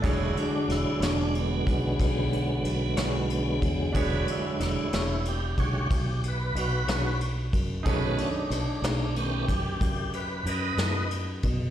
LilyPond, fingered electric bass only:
\new Staff \with { instrumentName = "Fingered electric bass" } { \clef bass \time 12/8 \key e \mixolydian \tempo 4. = 61 e,,8 r8 e,,16 r16 e,,4 b,,8 b,,4 b,,8 b,,4 e,8 | e,,8 r8 e,,16 r16 e,,4 b,,8 b,,4 b,,8 b,,4 fis,8 | b,,8 r8 b,,16 r16 b,,4 fis,8 fis,4 fis,8 fis,4 b,8 | }